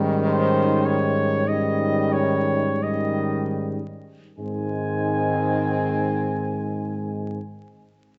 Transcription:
0.00 3.79 G#2 medium
0.00 1.43 D#3 loud
0.00 1.47 G3 loud
0.00 1.43 C#4 loud
0.28 0.87 C5 loud
0.85 1.49 C#5 loud
1.47 2.66 D#3 loud
1.47 2.80 G3 loud
1.47 2.80 C#4 loud
1.47 2.14 D#5 loud
2.12 2.84 C#5 loud
2.82 3.81 D#3 medium
2.82 3.81 G3 medium
2.82 3.82 C#4 medium
2.82 3.60 D#5 loud
4.38 7.40 G#2 medium
4.38 7.41 D#3 medium
4.38 7.40 G#3 medium
4.38 7.41 C4 loud
4.38 7.40 G#5 loud

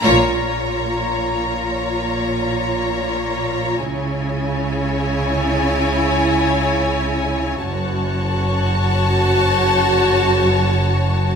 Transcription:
0.02 3.79 A#1 medium
0.02 3.77 A#2 medium
0.02 3.78 F4 medium
0.02 3.78 C#5 medium
0.02 3.77 A#5 medium
3.82 7.61 C#2 medium
3.82 7.61 C#3 medium
3.82 7.57 E4 medium
3.82 7.57 C#5 medium
3.82 7.57 G#5 medium
7.60 11.36 F#1 medium
7.60 11.36 F#2 medium
7.60 11.36 F#4 medium
7.60 11.36 C#5 medium
7.60 11.36 A5 medium
7.60 11.04 C#6 medium
7.60 9.71 F#6 medium
9.71 10.41 G6 medium

